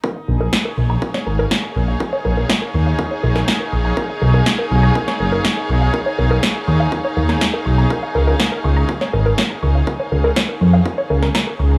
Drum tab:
SD |----o----o--o---|----o------oo---|----o----o--o---|----o------oo---|
BD |o---o---o---o---|o---o---o---o---|o---o---o---o---|o---o---o---o---|

SD |----o----o--o---|----o------oo---|
BD |o---o---o---o---|o---o---o---o---|